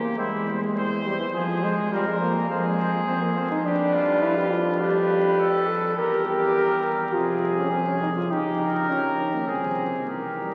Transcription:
Already playing: E2 A#3 G4
0.17 E2 G3 G#3 E4 C5
0.47 G3 C5
0.76 E2 G3 C5
1.05 G3 C5
1.19 E3
1.34 F2 F3 G#4 C5
1.63 F3 G#3 C5
1.92 F2 F3 G3 A#4 C5
2.08 G#3
2.21 F3 A#3 C5
2.49 F2 F3 G#3 G#4 C5
2.78 F3 C5
3.06 F2 F3 C4 C5
3.22 A#3
3.36 F3 C4 C5
3.51 D#4
3.65 F2 G3 D4 G4 B4
3.94 F4
4.22 E4
4.37 G4
4.51 F4
4.80 G3 D4 G4 B4
5.39 A4
5.68 A4
5.97 E2 G3 G4 A#4
6.26 G4
6.55 A#4
7.14 F2 C3 F4 G#4
7.59 C#4
7.73 C3 C4 G#4
7.88 C#4
8.03 D#4
8.17 F4
8.30 A#1 C#3 D#4 G4
8.60 A#4
8.89 C#3 C#4 G4
9.18 D#3
9.34 A#3
9.48 C2 F3 C4 G#4
10.09 E3 G4 A#4
10.41 G3

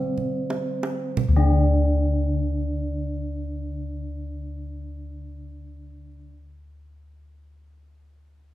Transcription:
Already playing: D3 G3 C4 C5
0.18 kendang low
0.50 C5, kendang high
0.83 kendang high
1.17 kendang low
1.29 D2
1.36 D3 D4 D5

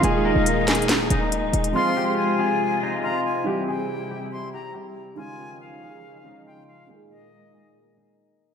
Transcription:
Already playing: D#4 F4 D#5 F5
0.01 D#1 A#2 D#3 G#3 A#3 G#4 G#5, closed hi-hat
0.06 G#4
0.25 A#3 A#4 D#5
0.35 D#1
0.46 closed hi-hat
0.67 G#4 G#5, snare, clap, closed hi-hat
0.75 closed hi-hat
0.82 closed hi-hat
0.89 F1, snare, clap, closed hi-hat
1.00 D#1
1.10 D#1 D#4 D#5, closed hi-hat
1.32 closed hi-hat
1.43 C#1
1.53 D#1, closed hi-hat
1.64 closed hi-hat
1.72 C3 F3 G#3 C4 F4 F5 C6
1.77 G#4
1.97 G4 G5
2.17 G#5
2.39 G#4 G#5
2.83 D#4 D#5
3.03 F4 F5 A#5
3.25 G#5
3.44 E3 G3 C4 E4 G4 G5
3.49 G4
3.68 G#4 G5 G#5
4.11 G4 G5
4.32 C6
4.53 G4 G5 A#5
4.74 G4 G5
5.15 C#3 D#3 F3 G#3 C#4 D#4 F4 F5 G#5
5.20 F4
5.39 G4 G5
5.61 F5
5.82 G#4 G#5
6.24 D#3 G#3 C#4 D#4 G#4 D#5
6.46 F4 F5 G5
6.68 F5
6.87 A#2 D#3 G#3 A#3 D#4 G#4 G#5
6.92 G#4
7.10 A#3 A#4 D#5
7.53 G#4 G#5
7.97 D#4 D#5

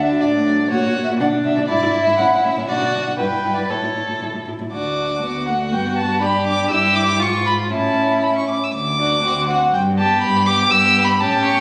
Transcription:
Already playing: D2 D4 E5
0.00 D4
0.11 F#4
0.21 A2 D4 D5
0.36 A3
0.47 F#3
0.60 A3
0.70 A#2 F#4 C#5
0.82 A#2 F#4
0.94 A#2 F#4
1.04 A#2 E5
1.09 F#4
1.20 B2 D4 F#5
1.32 B2 D4
1.44 B2 D4 E5
1.56 B2 D4
1.69 G#2 E4 D5
1.81 G#2 E4
1.93 G#2 E4
2.04 G#2 E4 E5
2.18 A2 C#4 F#5
2.31 A2 C#4
2.44 A2 C#4 E5
2.56 A2 C#4
2.68 B2 D4 F#4 D5
2.81 B2 D4
2.94 B2 D4
3.03 D4 F#5
3.07 B2
3.18 G2 E4 B4 G5
3.32 G2 E4
3.44 G2 E4
3.54 G2 E4 D5
3.69 A2 E4 A4 C#5
3.81 A2 E4
3.94 A2 E4
4.08 A2 E4
4.20 A2 E4
4.33 A2 E4
4.46 A2 E4
4.59 A2 E4
4.72 D2 D4 F#4 D6
5.22 D2 B3 F#4
5.47 A3 F#5
5.71 G2 B3 G5
5.97 A5
6.21 D4 G4 B5
6.47 D6
6.70 G2 E4 G4 E6
6.95 D6
7.20 G#2 F4 C#6
7.46 B5
7.71 A2 C#4 E4 A5
8.23 B5
8.37 C#6
8.49 D6
8.64 E6
8.73 D2 D6
8.98 D4 F#4
9.23 D2 C4 F#4
9.48 C4 F#4 F#5
9.73 G2 G5
9.98 B3 G4 A5
10.22 G2 B5
10.46 B3 G4 D6
10.71 G2 B3 G4 E6
11.04 B5
11.21 A2 C#4 G4 A5
11.45 C#6

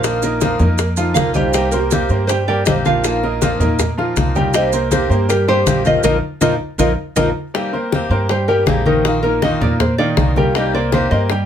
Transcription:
Already playing: A#1 F3 F4 A#4 F5
0.03 D#3 A#3 D#4 F4, high bongo, high conga, maracas
0.22 A#3 D#4 F4 A#4 D#5, high bongo, high conga, maracas
0.41 D#3 F3 A#3 D#4 F4 F5, high bongo, high conga, maracas
0.59 F2 A#3 D#4 F4 A#4 D#5, high conga, low conga, maracas
0.78 muted steel-string acoustic guitar stroke, high bongo, high conga, maracas
0.97 F3 A#3 D#4 F4 F5, high bongo, high conga, maracas
1.14 C2 D#3 A#3 A#4 F5, high bongo, low bongo, high conga, maracas
1.19 D#4 F4
1.34 G3 G4 C5 D#5 G5, high bongo, high conga, maracas
1.53 C3 D#3 G3 A#3 C4 G4 G5, high bongo, high conga, maracas
1.71 A#3 C4 G4 A#4 C5, high conga, maracas
1.91 C3 D#3 A#3 C4 G4, high bongo, high conga, maracas
2.09 G2 A#3 C4 G4 A#4 C5, high conga, maracas
2.27 G3 G4 C5 G5, muted steel-string acoustic guitar stroke, high bongo, high conga, maracas
2.47 G3 A#3 C4 G4 A#4 D5 G5, high conga
2.66 A#1 C3 D#3 A#3 C4 G4 C5 D#5, high bongo, low bongo, high conga, maracas
2.85 F3 F4 A#4 F5, high conga, maracas
3.04 D#3 A#3 D#4 F4, high bongo, high conga, maracas
3.23 A#3 D#4 F4 A#4 D#5, high bongo, high conga
3.42 D#3 F3 A#3 D#4 F4 F5, high bongo, high conga, maracas
3.59 A#2 A#3 D#4 F4 A#4 D#5, high conga, low conga, maracas
3.79 muted steel-string acoustic guitar stroke, high bongo, high conga, low conga, maracas
3.98 F3 A#3 D#4 F4 F5, high bongo, high conga
4.16 C2 D#3 A#3 D#4 F4, high bongo, low bongo, high conga, maracas
4.36 G3 G4 G5, high bongo, high conga, maracas
4.54 C3 D#3 G3 A#3 C4 G4 C5 D#5 G5, high bongo, high conga, maracas
4.73 A#3 C4 G4 A#4 C5, high conga, maracas
4.91 C3 D#3 A#3 C4 G4 C5, high bongo, high conga, maracas
5.09 G2 A#3 C4 G4 A#4 C5, high conga, maracas
5.29 G3 G4 A#4 G5, muted steel-string acoustic guitar stroke, high bongo, high conga, maracas
5.48 G3 A#3 C4 G4 C5 G5, high conga
5.66 A#1 C3 D#3 A#3 C4 G4, high bongo, low bongo, high conga, maracas
5.85 F3 F4 A#4 D#5 F5, high conga, maracas
6.03 A#1 F3 A#3 D#4 F4 A#4 D#5, low bongo, high conga, maracas
6.41 A#1 F3 A#3 D#4 F4 A#4 D#5, low bongo, high conga, maracas
6.78 A#1 F3 A#3 D#4 F4 A#4 D#5, low bongo, high conga, maracas
7.16 A#1 F3 A#3 D#4 F4 A#4 D#5, low bongo, high conga, maracas
7.54 C3 D#3 G3 A#3 C4 G4 G5, high bongo, high conga
7.73 A#3 C4 G4 A#4 C5, high conga
7.92 C3 D#3 A#3 C4 G4, high bongo, high conga
8.09 G2 A#3 C4 G4 A#4 C5, high conga
8.14 A#3
8.29 G3 G4 C5 G5, muted steel-string acoustic guitar stroke, high bongo, high conga
8.48 G3 A#3 C4 G4 A#4 G5, high conga
8.66 A#1 C3 D#3 A#3 C4 G4 G#4, high bongo, low bongo, high conga
8.86 D#3 D#4 A#4 D#5, high conga
9.05 D#3 A#3 D#4 F4, high bongo, high conga
9.23 A#3 D#4 F4 A#4, high bongo, high conga
9.42 D#3 A#3 D#4 F4 D#5, high bongo, high conga
9.61 A#2 A#3 D#4 F4 A#4 D5, high conga, low conga
9.80 C5, muted steel-string acoustic guitar stroke, high bongo, high conga, low conga
9.98 D#3 A#3 D#4 F4 D5 F5, high bongo, high conga
10.17 C2 D#3 A#3 D#4 F4, high bongo, low bongo, high conga
10.36 G3 G4 A#4 G5, high bongo, high conga
10.55 C3 D#3 G3 A#3 C4 G4 D#5 G5, high bongo, high conga
10.74 A#3 C4 G4 A#4 C5 D5, high conga
10.92 C3 D#3 A#3 C4 G4 C5, high bongo, high conga
11.11 G2 A#3 C4 G4 A#4 C5 D#5, high conga
11.30 G3 G4 G5, muted steel-string acoustic guitar stroke, high bongo, high conga

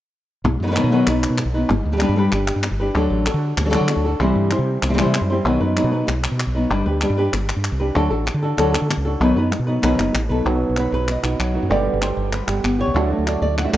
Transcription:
0.44 B1, muted nylon-string guitar stroke
0.60 F#2 D#3 F#3 B3 D#4 B4
0.67 D#3 F#3 B3 D#4 B4
0.71 D#3 F#3 B3 D#4 B4
0.76 B2 D#3 F#3 B3 D#4 B4, clap
0.84 B2
0.91 B2 D#3 F#3 B3 D#4 B4
1.07 B1 F#3 B3 D#4 B4, clap
1.23 clap
1.30 B2
1.38 muted nylon-string guitar stroke, clap
1.45 B1
1.54 F#3 B3 D#4 B4
1.69 G1, muted nylon-string guitar stroke, clap
1.85 D2
1.92 G3 D4 G4 B4
1.97 G3 D4 G4 B4, clap
2.01 G3 D4 G4 B4
2.09 G2
2.16 G3 D4 G4 B4
2.32 G1 D4 G4 B4, clap
2.48 clap
2.56 G2
2.63 muted nylon-string guitar stroke, clap
2.71 G1
2.80 D4 G4 B4
2.95 D2 D3 F#3 D4 F#4 A4, clap
3.10 A1
3.26 D4 F#4 A4, clap
3.34 D3
3.57 D2, muted nylon-string guitar stroke, clap
3.65 F#3 D4 F#4 A4
3.70 F#3 D4 F#4 A4, clap
3.74 D3 F#3 D4 F#4 A4
3.81 D3
3.88 F#3 D4 F#4 A4, clap
3.96 D2
4.05 D4 F#4 A4
4.20 C2 C3 E3 G3 C4 E4 C5, clap
4.35 G2
4.51 G3 C4 E4 C5, clap
4.59 C3
4.82 C2, muted nylon-string guitar stroke, clap
4.89 E3 G3 C4 E4 C5
4.94 E3 G3 C4 E4 C5
4.98 C3 E3 G3 C4 E4 C5, clap
5.06 C3
5.14 G3 C4 E4 C5, clap
5.21 F#2
5.30 G3 C4 E4 C5
5.45 B1 B2 D#3 F#3 B3 D#4 B4, clap
5.60 F#2 F#3 B3 D#4 B4
5.76 F#3 B3 D#4 B4, clap
5.84 B2
5.91 F#3 B3 D#4 B4
6.07 B1, muted nylon-string guitar stroke, clap
6.24 clap
6.32 B2
6.40 clap
6.47 B1
6.55 F#3 B3 D#4 B4
6.70 G1 G3 D4 G4 B4, clap
6.86 D2 D4 G4 B4
7.01 G3 D4 G4 B4, clap
7.10 G2
7.18 D4 G4 B4
7.33 G1, muted nylon-string guitar stroke, clap
7.49 clap
7.56 G2
7.64 clap
7.72 C2
7.80 D4 G4 B4
7.95 D2 D3 F#3 D4 F#4 A4, clap
8.10 A1 D4 F#4 A4
8.26 muted nylon-string guitar stroke, clap
8.34 D3
8.43 D4 F#4 A4
8.57 D2 D3 F#3 D4 F#4 A4, clap
8.72 D4 F#4 A4, clap
8.82 D3
8.90 muted nylon-string guitar stroke, clap
8.97 C#2
9.05 D4 F#4 A4
9.20 B1 B2 D#3 F#3 B3 D#4 B4, clap
9.36 F#2 F#3 B3 D#4 B4
9.51 muted nylon-string guitar stroke, clap
9.59 B2
9.67 F#3 B3 D#4 B4
9.82 B1 B2 D#3 F#3 B3 D#4 B4, clap
9.98 F#1 F#3 B3 D#4 B4, clap
10.13 A1, muted nylon-string guitar stroke, clap
10.29 B1 F#3 B3 D#4 A4 B4
10.45 B1 B2 F#3 B3 D#4 F#4, clap
10.69 B1
10.76 F#3 B3 D#4 F#4 B4, clap
10.92 B1 B4
11.07 D#5, muted nylon-string guitar stroke, clap
11.23 B1 B3 D#4 F#4, clap
11.39 B1 F#3, clap
11.54 B3 D#4 F#4
11.63 F#2
11.69 G1 B2 D3 G3 B3 G4 D5, clap
11.94 G1
12.01 D3 G3 G4 C5, clap
12.17 G1
12.32 B4, muted nylon-string guitar stroke, clap
12.47 G1 G3 B3 G4, clap
12.64 G1 B3, clap
12.79 G3 B3 G4 C#5
12.87 C2
12.94 D2 D3 F#3 A3 D4 F#4 A4, clap
13.10 A3 D4 F#4
13.18 D2
13.26 A3 D4 F#4 D5, clap
13.42 D2 D5
13.58 F#5, muted nylon-string guitar stroke, clap
13.64 D3 A3 D4 F#4 E5
13.69 D3 A3 D4 F#4
13.73 D2 A3 D4 F#4 F#5, clap

